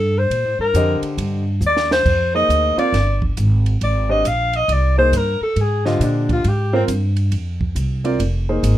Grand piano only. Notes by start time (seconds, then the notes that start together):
0.75 D3 G4 C5 D#5
2.34 A#3 D#4 G#4 C5
2.77 C4 F4 A#4 F5
4.09 D4 G4 C5 D#5
4.98 A#3 D#4 G#4 C5
5.85 D3 G4 C5 D#5
6.73 C4 F4 A#4 C5
8.04 C4 F4 A#4 D5
8.49 A#3 D#4 G#4 C5